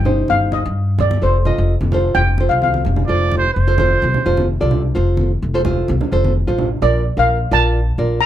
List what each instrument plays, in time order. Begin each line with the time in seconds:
Already playing: upright bass G1, steel pan G5
0.05 nylon-string guitar D#4 G4 C5, low conga
0.28 upright bass G1, steel pan F5, high conga
0.52 steel pan D#5, high conga
0.65 upright bass G2
0.98 upright bass G1, steel pan D5, low conga
1.11 high conga
1.22 upright bass F1, nylon-string guitar F4 A4 C5, steel pan C5
1.45 nylon-string guitar F4 A4 D#5, low conga
1.58 upright bass F1
1.81 upright bass F1, high conga
1.92 nylon-string guitar F4 A4 C5, low conga
2.15 upright bass F1, steel pan G5, high conga, low conga
2.38 nylon-string guitar F4 A4 C5, high conga
2.49 upright bass C2, steel pan F5
2.62 steel pan F5, high conga
2.74 high conga
2.85 upright bass F1, low conga
2.96 low conga
3.07 upright bass F1, nylon-string guitar F4 A4 C5, trumpet D5
3.32 high conga
3.38 trumpet C5
3.54 upright bass F1, trumpet C5
3.67 nylon-string guitar F4 A4 C5
3.78 nylon-string guitar F4 A4 C5, high conga, low conga
4.02 upright bass C2, high conga
4.14 low conga
4.26 upright bass F1, nylon-string guitar F4 A4 C5
4.37 high conga
4.61 upright bass C2, nylon-string guitar F4 A4 D5
4.71 low conga
4.95 upright bass F1, nylon-string guitar F4 A4 C5
5.17 high conga
5.42 upright bass F1
5.54 nylon-string guitar F4 A4 C5
5.65 nylon-string guitar F4 A4 C5, high conga, low conga
5.88 upright bass C2, high conga
6.01 low conga
6.12 upright bass F1, nylon-string guitar F4 A4 C5
6.24 high conga
6.47 upright bass A1, nylon-string guitar F4 A4 C5
6.58 low conga
6.82 upright bass A#1, nylon-string guitar F4 A#4 D5, steel pan D5
7.17 upright bass A#1, nylon-string guitar F4 A#4 F5, steel pan F5
7.51 upright bass A#1, nylon-string guitar F4 A#4 D5, steel pan A5
7.98 upright bass A#1, nylon-string guitar F4 A#4 D5
8.21 steel pan A#5